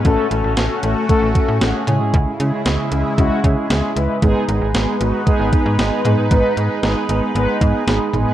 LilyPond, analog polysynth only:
\new Staff \with { instrumentName = "Analog polysynth" } { \time 4/4 \key gis \phrygian \tempo 4 = 115 <a cis' fis' a'>8 <a cis' fis' a'>8 <a cis' fis' a'>8 <a cis' fis' a'>8 <a cis' fis' a'>8 <a cis' fis' a'>8 <a cis' fis' gis'>8 <gis cis' e' gis'>8~ | <gis cis' e' gis'>8 <gis cis' e' gis'>8 <gis cis' e' gis'>8 <gis cis' e' gis'>8 <gis cis' e' fis'>8 <gis cis' e' gis'>8 <gis cis' e' gis'>8 <gis cis' e' b'>8 | <gis b dis' gis'>8 <gis b dis' gis'>8 <gis b dis' gis'>8 <gis b dis' fis'>8 <gis b dis' gis'>8 <gis b dis' gis'>8 <gis b dis' gis'>8 <gis b dis' gis'>8 | <gis b dis' b'>8 <gis b dis' gis'>8 <gis b dis' gis'>8 <gis b dis' gis'>8 <gis b dis' b'>8 <gis b dis' gis'>8 <gis b dis' gis'>8 <gis b dis' gis'>8 | }